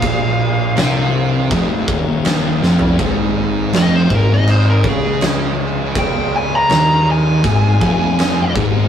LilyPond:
<<
  \new Staff \with { instrumentName = "Lead electric guitar" } { \time 4/4 \key aes \major \tempo 4 = 81 f''2 r2 | r4 ees''16 c''16 bes'16 ees''16 c''16 bes'16 aes'8 r4 | g''8 aes''16 bes''8. aes''2 r8 | }
  \new Staff \with { instrumentName = "Distorted electric guitar" } { \clef bass \time 4/4 \key aes \major bes,4 c4 f,8 ees,4 f,8 | aes,4 f,8 aes,4 des4.~ | des4 ees4 aes,8 f,4 aes,8 | }
  \new Staff \with { instrumentName = "Distorted electric guitar" } { \clef bass \time 4/4 \key aes \major bes,4 c4 f,8 ees,4 f,8 | aes,4 f,8 aes,4 des4.~ | des4 ees4 aes,8 f,4 aes,8 | }
  \new Staff \with { instrumentName = "Picked electric bass" } { \clef bass \time 4/4 \key aes \major bes,,4 c,4 f,,8 ees,,4 f,,8 | aes,,4 f,,8 aes,,4 des,4.~ | des,4 ees,4 aes,,8 f,,4 aes,,8 | }
  \new DrumStaff \with { instrumentName = "Drums" } \drummode { \time 4/4 <cymc bd>4 <cymc sn>4 <cymc bd>8 bd8 <cymc sn>8 sn16 tomfh16 | <cymc bd>4 <cymc sn>8 bd8 cymc8 bd8 <cymc sn>4 | <cymc bd>4 <cymc sn>4 <cymc bd>8 bd8 <cymc sn>8 bd8 | }
>>